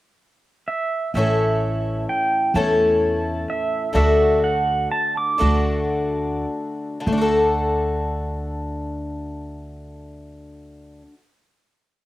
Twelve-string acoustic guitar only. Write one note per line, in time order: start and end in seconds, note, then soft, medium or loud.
1.15 2.54 A2 medium
1.15 2.54 E3 medium
1.15 2.55 A3 medium
1.15 2.55 C#4 medium
1.15 2.56 E4 medium
1.15 2.57 A4 medium
2.55 3.95 A2 medium
2.55 3.92 E3 medium
2.55 3.93 A3 medium
2.55 3.94 C#4 medium
2.55 3.94 E4 medium
2.55 3.95 A4 medium
3.93 5.38 D3 medium
3.93 5.39 A3 medium
3.93 5.40 D4 medium
3.93 5.40 F#4 medium
3.93 5.41 A4 medium
5.38 6.99 D3 medium
5.38 7.06 A3 medium
5.38 7.06 D4 medium
5.38 7.06 F#4 medium
5.38 7.07 A4 medium
7.00 11.01 D3 medium
7.07 11.09 A3 medium
7.12 11.14 D4 medium
7.18 11.19 F#4 medium
7.18 11.23 A4 medium